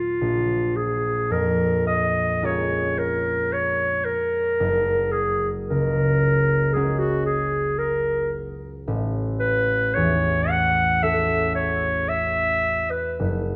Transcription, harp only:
Already playing: A#2 F#3 D#4 F4 A#4
0.21 A#1
1.30 F2
2.42 G#3 C#4 F4 A#4
4.60 F#1
5.70 C#2
6.75 G#3 C#4 F#4 A#4
8.88 A1
9.96 E2
11.02 A3 C#4 F#4 A4
13.20 F#1

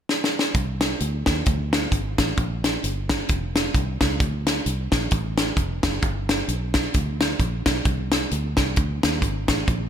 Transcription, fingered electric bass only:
0.55 C2
1.01 D2
1.27 D#2
1.47 D2
1.92 G#1
2.19 A1
2.38 A#1
2.84 G1
3.30 F1
3.75 C2
4.01 C#2
4.20 D2
4.66 C2
4.92 A#1
5.12 A1
5.57 F1
5.84 F#1
6.03 G1
6.48 B1
6.95 D2
7.40 A#1
7.66 B1
7.86 C2
8.32 D2
8.58 C2
8.77 D2
9.04 D#2
9.22 G#1
9.49 A1
9.68 A#1

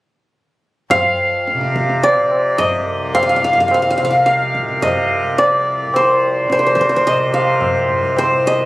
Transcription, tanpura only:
0.92 F2
1.54 C3
2.16 C3
2.78 C2
3.40 F2
4.01 C3
4.63 C3
5.23 C2
5.85 F2
6.47 C3
7.09 C3
7.71 C2
8.31 F2

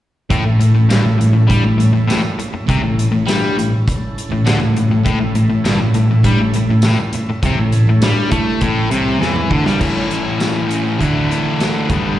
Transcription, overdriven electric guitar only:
0.31 A2
0.45 A2
0.59 A2
0.75 A2
0.89 G2
1.04 A2
1.18 A2
1.33 A2
1.47 G3
1.64 A2
1.78 A2
1.93 A2
2.08 A2
2.23 muted overdriven electric guitar stroke
2.39 muted overdriven electric guitar stroke
2.54 muted overdriven electric guitar stroke
2.69 C3
2.83 A2
3.12 A2
3.27 G3
3.57 A2
4.32 A2
4.46 D3
4.61 A2
4.77 A2
4.91 A2
5.05 A2
5.20 A2
5.35 A2
5.50 A2
5.64 G2
5.81 A2
5.95 A2
6.11 A2
6.26 G3
6.41 A2
6.56 A2
6.70 A2
6.84 A2
7.00 muted overdriven electric guitar stroke
7.15 muted overdriven electric guitar stroke
7.30 muted overdriven electric guitar stroke
7.45 C3
7.60 A2
7.89 A2
8.03 G3
8.32 A3
8.63 A2
8.91 C3
9.21 E3
9.53 D3
9.65 G3
9.80 A2 E3 A3 C#4 E4
10.99 D3 A3 D4 E4
11.89 G2 D3 G3 B3 D4

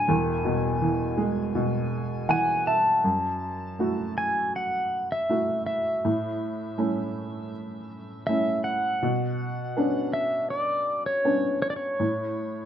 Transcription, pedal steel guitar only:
Already playing: G#5
2.31 G#5
2.67 A5
4.18 G#5
4.56 F#5
5.12 E5
5.66 E5
8.27 E5
8.64 F#5
10.13 E5
10.50 D5
11.06 C#5
11.62 C#5
11.70 D5
11.76 C#5

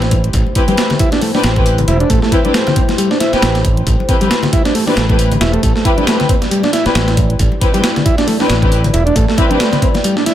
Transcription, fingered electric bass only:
Already playing: A1
0.34 A1
1.44 A1
1.88 E1
2.10 A1
3.33 muted fingered electric bass stroke
3.43 A1
3.87 A1
4.97 A1
5.41 E1
5.63 A1
6.86 muted fingered electric bass stroke
6.95 A1
7.39 A1
8.50 A1
8.94 E1
9.16 A1

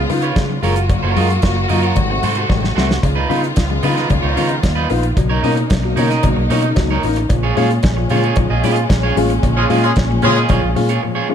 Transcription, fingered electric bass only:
0.10 C#3
0.36 C#3
0.63 F#1
1.03 F#1
1.16 F#2
1.44 F#1
1.70 F#2
1.97 G#1
2.23 G#2
2.50 A1
2.77 C2
3.03 C#2
3.30 C#3
3.57 C#2
3.83 C#3
4.11 C#2
4.23 C#2
4.37 C#3
4.64 D#2
4.90 A#1
5.17 B1
5.43 B2
5.71 B1
5.97 B2
6.24 B1
6.37 B1
6.50 B2
6.77 C#2
7.04 A1
7.30 A#1
7.57 A#2
7.84 A#1
8.11 A#2
8.37 A#1
8.50 A#1
8.64 A#2
8.90 A#1
9.17 A1
9.43 A#1
9.70 A#2
9.97 A#1
10.23 A#2
10.50 A#1
10.63 A#1
10.76 A#2

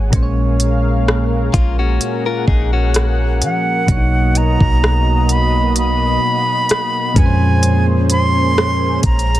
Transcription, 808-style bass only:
Already playing: G#1
0.13 A#1
1.54 A#1
2.48 A#1
3.42 F3
3.88 B1
4.61 B1
7.16 F2
9.04 A#1

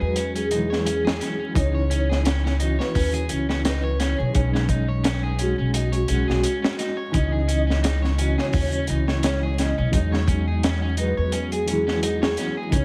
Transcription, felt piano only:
Already playing: F#3 G#3 D#4 F#4
0.50 F#3 G#3
0.55 E3
1.54 E3 C#4
1.60 D#4
2.60 E3 C#4 F#4
3.29 E3 C#4
4.33 G#3 C#4
4.38 D#4
5.40 G#3 C#4 G#4
6.07 G#3 C#4
6.12 F#4
7.12 E3 C#4
7.17 D#4
8.18 E3 C#4 F#4
8.86 E3 C#4
9.92 F#3 G#3
9.96 D#4
10.97 F#3 G#3 F#4
11.66 F#3 G#3
11.71 E3
12.70 E3 C#4
12.75 D#4

